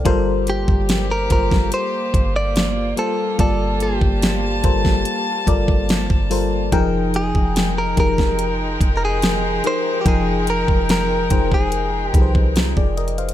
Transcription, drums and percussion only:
0.05 kick, closed hi-hat
0.47 closed hi-hat
0.68 kick
0.89 snare, closed hi-hat
1.30 kick, closed hi-hat
1.52 kick, snare
1.72 closed hi-hat
2.14 kick, closed hi-hat
2.56 snare, closed hi-hat
2.97 closed hi-hat
3.39 kick, closed hi-hat
3.80 closed hi-hat
4.01 kick
4.22 snare, closed hi-hat
4.64 kick, closed hi-hat
4.85 kick, snare
5.05 closed hi-hat
5.47 kick, closed hi-hat
5.68 kick
5.89 snare, closed hi-hat
6.10 kick
6.31 open hi-hat
6.72 kick, closed hi-hat
7.14 closed hi-hat
7.35 kick
7.56 snare, closed hi-hat
7.97 kick, closed hi-hat
8.18 kick, snare
8.39 closed hi-hat
8.81 kick, closed hi-hat
9.22 snare, closed hi-hat
9.64 closed hi-hat
10.06 kick, closed hi-hat
10.47 closed hi-hat
10.68 kick
10.89 snare, closed hi-hat
11.30 kick, closed hi-hat
11.52 kick
11.72 closed hi-hat
12.14 kick, closed hi-hat
12.35 kick
12.56 snare, closed hi-hat
12.77 kick
12.97 closed hi-hat, open hi-hat
13.08 closed hi-hat
13.18 closed hi-hat
13.29 closed hi-hat

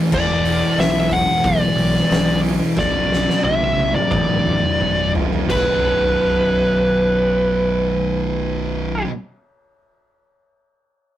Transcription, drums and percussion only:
0.12 kick, crash
0.45 open hi-hat
0.78 snare, open hi-hat
0.96 snare
1.11 kick, open hi-hat
1.44 kick, open hi-hat
1.78 open hi-hat
1.95 snare
2.11 snare, open hi-hat
2.44 open hi-hat
2.77 kick, snare
3.12 snare
3.29 snare
3.44 high tom
3.78 high tom
3.94 mid tom
4.11 kick, mid tom
4.46 mid tom
4.63 mid tom
4.81 mid tom
5.15 floor tom
5.33 floor tom
5.50 kick, crash

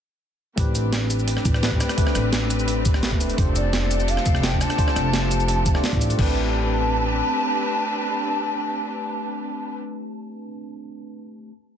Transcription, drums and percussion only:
0.58 kick, closed hi-hat
0.75 closed hi-hat, shaker
0.93 snare, closed hi-hat
1.10 closed hi-hat, shaker
1.19 shaker
1.28 closed hi-hat
1.37 cross-stick
1.45 kick, closed hi-hat, shaker
1.54 cross-stick
1.63 snare, closed hi-hat, shaker
1.72 kick
1.80 cross-stick, closed hi-hat, shaker
1.89 cross-stick, closed hi-hat, shaker
1.98 kick, closed hi-hat
2.07 cross-stick
2.15 cross-stick, closed hi-hat, shaker
2.33 snare, closed hi-hat
2.50 closed hi-hat, shaker
2.59 shaker
2.68 closed hi-hat
2.85 kick, closed hi-hat, shaker
2.94 cross-stick
3.03 snare, closed hi-hat, shaker
3.12 kick
3.21 closed hi-hat, shaker
3.30 closed hi-hat, shaker
3.38 kick, closed hi-hat
3.56 closed hi-hat, shaker
3.73 snare, closed hi-hat
3.91 closed hi-hat, shaker
4.00 shaker
4.08 closed hi-hat
4.17 cross-stick
4.26 kick, closed hi-hat, shaker
4.35 cross-stick
4.43 snare, closed hi-hat, shaker
4.52 kick
4.61 cross-stick, closed hi-hat, shaker
4.70 cross-stick, closed hi-hat, shaker
4.78 kick, closed hi-hat
4.88 cross-stick
4.96 cross-stick, closed hi-hat, shaker
5.13 snare, closed hi-hat
5.31 closed hi-hat, shaker
5.40 shaker
5.48 closed hi-hat
5.66 kick, closed hi-hat, shaker
5.75 cross-stick
5.84 snare, closed hi-hat, shaker
5.93 kick, closed hi-hat
6.01 closed hi-hat, shaker
6.10 closed hi-hat, shaker
6.19 kick, crash

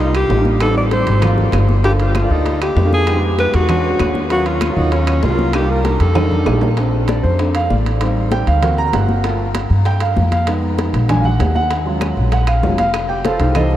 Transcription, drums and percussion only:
0.15 high conga, high timbale, claves
0.30 high bongo, low bongo, high conga, low timbale
0.45 high conga
0.60 high bongo, high conga, high timbale, claves
0.77 high conga
0.91 high bongo, high conga, high timbale
1.07 high bongo, high conga, high timbale
1.22 high bongo, high conga, low conga, high timbale, claves
1.37 high bongo, high conga, low conga
1.52 high bongo, low bongo, high conga, high timbale, low timbale, claves
1.69 high bongo, high conga
1.84 high bongo, high timbale
2.00 high conga, high timbale
2.15 high bongo, high conga, high timbale, claves
2.31 high conga
2.46 high bongo, high conga, high timbale
2.62 high conga, high timbale, claves
2.77 high bongo, low bongo, high conga, low timbale
2.92 high conga
3.07 high bongo, high conga, high timbale, claves
3.23 high conga
3.38 high bongo, high conga, high timbale
3.54 high bongo, high conga, high timbale
3.69 high bongo, high conga, low conga, high timbale, claves
3.84 high bongo, high conga
3.99 high bongo, low bongo, high conga, high timbale, claves
4.15 high bongo, high conga
4.30 high bongo, high conga, high timbale
4.46 high conga, high timbale
4.61 high bongo, high conga, high timbale, claves
4.77 high conga
4.92 high bongo, high conga, high timbale
5.07 high conga, high timbale, claves
5.23 high bongo, low bongo, high conga, low timbale
5.39 high conga
5.53 high bongo, high conga, high timbale, claves
5.69 high conga
5.85 high bongo, high conga, high timbale
6.00 high bongo, high conga, high timbale
6.15 high bongo, high conga, low conga, high timbale, claves
6.31 high bongo, high conga, low conga
6.46 high bongo, low bongo, high conga, low timbale, claves
6.61 high bongo, high conga, low timbale
6.77 high bongo, high conga, high timbale
6.93 high conga
7.08 high bongo, high conga, high timbale
7.24 high bongo, high conga
7.39 high bongo, high conga, high timbale
7.55 high bongo, high conga, high timbale
7.70 high bongo, low bongo, high conga
7.86 high bongo, high timbale
8.01 high bongo, high conga, high timbale
8.17 high conga
8.32 high bongo, high conga, high timbale
8.47 high bongo, high conga, high timbale
8.63 high bongo, high conga, low conga, high timbale
8.78 high bongo, high conga
8.93 high bongo, low bongo, high conga, high timbale, low timbale
9.09 high bongo, high conga
9.24 high bongo, high conga, high timbale
9.40 high conga
9.54 high bongo, high conga, high timbale
9.70 high bongo, high conga
9.85 high bongo, high conga, high timbale
10.00 high bongo, high conga, high timbale
10.16 high bongo, low bongo, high conga
10.31 high bongo, high conga, high timbale
10.47 high bongo, high conga, high timbale
10.63 high conga
10.78 high bongo, high conga, high timbale
10.94 high bongo, high conga, high timbale
11.09 high bongo, high conga, low conga, high timbale
11.24 high bongo, high conga, low conga
11.40 high bongo, low bongo, high conga, high timbale, low timbale
11.55 high bongo, high conga
11.71 high bongo, high conga, high timbale
11.86 high conga
12.01 high bongo, high conga, high timbale, claves
12.17 high bongo, high conga
12.32 high bongo, high conga, high timbale
12.47 high bongo, high conga, high timbale, claves
12.63 high bongo, low bongo, high conga, low timbale
12.78 high bongo, high conga, high timbale
12.94 high bongo, high conga, high timbale, claves
13.10 high conga
13.25 high bongo, high conga, high timbale
13.40 high bongo, high conga, high timbale
13.55 high bongo, high conga, low conga, high timbale, claves
13.71 high bongo, high conga

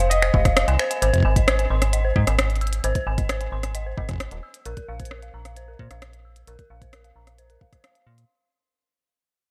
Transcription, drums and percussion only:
0.11 closed hi-hat
0.22 finger snap
0.34 kick
0.45 kick, cross-stick, closed hi-hat
0.57 finger snap, cross-stick, closed hi-hat
0.68 closed hi-hat
0.79 finger snap
0.91 closed hi-hat
1.02 closed hi-hat
1.13 kick, closed hi-hat
1.16 kick
1.18 kick
1.20 kick
1.23 kick
1.36 kick, closed hi-hat
1.48 cross-stick, closed hi-hat
1.59 closed hi-hat
1.82 cross-stick, closed hi-hat
1.93 closed hi-hat
2.16 kick
2.27 cross-stick, closed hi-hat
2.39 cross-stick, closed hi-hat
2.50 closed hi-hat
2.56 closed hi-hat
2.61 closed hi-hat
2.67 closed hi-hat
2.73 closed hi-hat
2.84 closed hi-hat
2.95 kick, closed hi-hat
3.18 kick, closed hi-hat
3.29 cross-stick, closed hi-hat
3.41 closed hi-hat
3.63 cross-stick, closed hi-hat
3.75 closed hi-hat
3.98 kick
4.09 kick, cross-stick, closed hi-hat
4.11 kick
4.13 kick
4.16 kick
4.18 kick, cross-stick, closed hi-hat
4.31 closed hi-hat
4.54 closed hi-hat
4.66 closed hi-hat
4.77 kick, closed hi-hat
5.00 kick, closed hi-hat
5.05 closed hi-hat
5.11 cross-stick
5.22 closed hi-hat
5.45 cross-stick, closed hi-hat
5.57 closed hi-hat
5.79 kick
5.91 cross-stick, closed hi-hat
6.02 cross-stick, closed hi-hat
6.13 closed hi-hat
6.36 closed hi-hat
6.47 closed hi-hat
6.59 kick, closed hi-hat
6.82 kick, closed hi-hat
6.93 cross-stick, closed hi-hat
7.04 closed hi-hat
7.27 cross-stick, closed hi-hat
7.38 closed hi-hat
7.50 closed hi-hat
7.61 kick
7.73 kick, cross-stick, closed hi-hat
7.84 cross-stick, closed hi-hat
7.95 closed hi-hat
8.18 closed hi-hat

